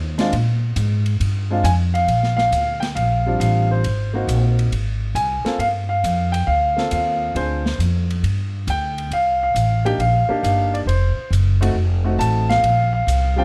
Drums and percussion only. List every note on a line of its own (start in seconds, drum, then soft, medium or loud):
0.19 snare medium
0.19 ride medium
0.33 ride medium
0.76 hi-hat pedal medium
0.76 ride medium
1.06 ride soft
1.21 ride medium
1.65 hi-hat pedal medium
1.65 ride medium
1.95 ride soft
2.08 ride medium
2.23 snare soft
2.38 snare soft
2.52 hi-hat pedal medium
2.52 ride medium
2.82 snare soft
2.82 ride soft
2.96 ride medium
3.41 hi-hat pedal soft
3.41 ride medium
3.84 ride medium
4.29 hi-hat pedal medium
4.29 ride medium
4.59 ride soft
4.72 ride medium
5.16 hi-hat pedal medium
5.16 ride medium
5.46 snare soft
5.46 ride soft
5.60 ride medium
6.04 hi-hat pedal medium
6.04 ride medium
6.34 ride medium
6.78 snare soft
6.91 hi-hat pedal medium
6.91 ride medium
7.36 ride medium
7.66 snare medium
7.80 hi-hat pedal medium
7.80 ride medium
8.10 ride soft
8.24 ride medium
8.68 hi-hat pedal medium
8.68 ride medium
8.98 ride soft
9.11 ride medium
9.56 hi-hat pedal medium
9.56 ride medium
9.86 ride soft
10.00 ride medium
10.44 hi-hat pedal medium
10.44 ride medium
10.75 ride soft
10.89 ride medium
11.33 hi-hat pedal medium
11.33 ride medium
11.62 ride medium
12.21 hi-hat pedal medium
12.21 ride medium
12.50 snare medium
12.50 ride soft
12.64 ride medium
13.08 hi-hat pedal medium
13.08 ride medium